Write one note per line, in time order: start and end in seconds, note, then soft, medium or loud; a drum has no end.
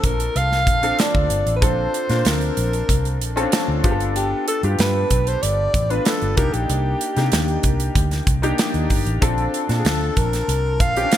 0.00 0.28 A#1 medium
0.00 0.83 C4 medium
0.00 0.83 D4 medium
0.00 0.83 F4 medium
0.00 0.83 A4 medium
0.00 0.49 A5 medium
0.00 kick medium
0.00 closed hi-hat medium
0.05 0.38 A#4 medium
0.20 closed hi-hat medium
0.36 0.67 C2 medium
0.36 1.01 F5 loud
0.36 closed hi-hat medium
0.52 snare soft
0.67 0.91 A#1 medium
0.67 kick medium
0.67 closed hi-hat medium
0.83 1.40 C4 medium
0.83 1.40 D4 medium
0.83 1.40 F4 medium
0.83 1.41 A4 medium
0.83 closed hi-hat soft
0.99 1.55 D5 medium
0.99 snare medium
0.99 closed hi-hat medium
1.15 1.27 D2 medium
1.15 kick medium
1.30 1.42 G1 medium
1.30 closed hi-hat medium
1.46 1.62 A1 medium
1.46 closed hi-hat medium
1.56 1.66 B4 medium
1.61 1.86 A#1 loud
1.61 1.96 C4 medium
1.61 1.96 D4 medium
1.61 1.96 F4 medium
1.61 1.97 A4 medium
1.61 2.29 C5 medium
1.61 kick loud
1.61 closed hi-hat medium
1.94 closed hi-hat medium
2.09 2.22 A#2 medium
2.09 3.01 C4 medium
2.09 3.01 D4 medium
2.09 3.02 F4 medium
2.09 2.17 A#4 medium
2.09 snare soft
2.09 closed hi-hat soft
2.17 3.05 C5 medium
2.25 2.50 D2 medium
2.25 3.21 A#4 medium
2.25 snare medium
2.25 closed hi-hat medium
2.41 closed hi-hat soft
2.57 2.81 A#1 medium
2.57 closed hi-hat medium
2.73 closed hi-hat soft
2.89 3.21 C2 medium
2.89 kick medium
2.89 closed hi-hat medium
3.05 closed hi-hat soft
3.21 3.45 A#1 medium
3.21 closed hi-hat medium
3.36 3.84 C4 medium
3.36 3.43 C#4 medium
3.36 3.82 F4 medium
3.36 3.84 A4 medium
3.36 closed hi-hat soft
3.43 3.82 D4 medium
3.52 snare medium
3.52 closed hi-hat medium
3.68 3.80 D2 medium
3.83 4.32 G1 medium
3.83 4.47 B3 medium
3.83 4.47 D4 medium
3.83 4.47 F4 medium
3.83 3.91 G4 medium
3.83 kick loud
3.83 closed hi-hat medium
3.91 4.51 A4 medium
4.00 closed hi-hat soft
4.16 4.45 G4 medium
4.16 closed hi-hat medium
4.48 4.62 A4 medium
4.48 closed hi-hat medium
4.63 4.75 G2 medium
4.63 5.55 B3 medium
4.63 5.55 D4 medium
4.63 5.55 F4 medium
4.63 5.56 G4 medium
4.63 closed hi-hat soft
4.79 5.03 G2 medium
4.79 5.30 B4 loud
4.79 snare medium
4.79 closed hi-hat medium
5.10 5.35 B1 medium
5.10 kick medium
5.10 closed hi-hat medium
5.27 5.44 C5 medium
5.27 closed hi-hat soft
5.42 5.67 G1 medium
5.42 5.92 D5 loud
5.42 closed hi-hat medium
5.74 5.98 A1 medium
5.74 kick medium
5.74 closed hi-hat medium
5.90 6.37 B3 medium
5.90 6.35 D4 medium
5.90 6.38 F4 medium
5.90 6.07 B4 medium
5.90 6.38 B4 medium
5.90 closed hi-hat soft
6.05 6.37 A4 medium
6.05 snare medium
6.05 closed hi-hat medium
6.22 6.34 G1 medium
6.22 closed hi-hat soft
6.36 6.50 C2 medium
6.36 7.00 A#3 medium
6.36 7.00 D4 medium
6.36 7.01 D#4 medium
6.36 7.01 G4 medium
6.36 6.54 A#4 medium
6.36 kick loud
6.36 closed hi-hat medium
6.53 6.66 A#1 medium
6.53 8.43 G4 medium
6.53 closed hi-hat soft
6.70 6.94 C2 loud
6.70 closed hi-hat medium
7.01 closed hi-hat medium
7.16 7.29 C3 medium
7.16 8.08 A#3 medium
7.16 8.08 D4 medium
7.16 8.09 D#4 medium
7.16 8.09 G4 medium
7.16 snare soft
7.16 closed hi-hat soft
7.32 7.57 D#2 medium
7.32 snare medium
7.32 closed hi-hat medium
7.48 closed hi-hat soft
7.63 7.88 C2 medium
7.63 kick medium
7.63 closed hi-hat medium
7.80 closed hi-hat medium
7.95 8.20 D2 medium
7.95 kick medium
7.95 closed hi-hat medium
8.11 snare soft
8.11 closed hi-hat soft
8.27 8.51 C2 medium
8.27 kick loud
8.27 closed hi-hat medium
8.42 9.00 A#3 medium
8.42 9.00 D4 medium
8.42 9.01 D#4 medium
8.42 9.01 G4 medium
8.42 closed hi-hat soft
8.58 snare medium
8.58 closed hi-hat medium
8.74 8.86 D#2 medium
8.74 closed hi-hat soft
8.90 9.03 G1 medium
8.90 kick medium
8.90 open hi-hat medium
9.06 9.18 A1 medium
9.06 closed hi-hat soft
9.21 9.46 A#1 medium
9.21 9.56 C4 medium
9.21 9.56 D4 medium
9.21 9.57 F4 medium
9.21 9.57 A4 medium
9.21 kick loud
9.21 closed hi-hat medium
9.38 closed hi-hat soft
9.54 closed hi-hat medium
9.69 9.81 A#2 medium
9.69 10.61 C4 medium
9.69 10.61 D4 medium
9.69 10.62 F4 medium
9.69 10.62 A5 medium
9.69 snare soft
9.69 closed hi-hat soft
9.79 9.88 G#4 medium
9.85 10.09 D2 medium
9.85 10.19 A4 medium
9.85 snare loud
9.85 closed hi-hat medium
10.17 10.41 A#1 medium
10.17 10.82 A#4 medium
10.17 kick medium
10.17 closed hi-hat medium
10.33 snare soft
10.33 closed hi-hat medium
10.48 10.80 C2 medium
10.48 closed hi-hat medium
10.80 11.05 A#1 medium
10.80 11.17 F5 loud
10.80 kick medium
10.80 closed hi-hat medium
10.96 11.17 C4 medium
10.96 11.03 C#4 medium
10.96 11.17 F4 medium
10.96 11.17 G4 medium
10.96 closed hi-hat soft
11.03 11.17 D4 medium
11.12 snare medium
11.12 closed hi-hat medium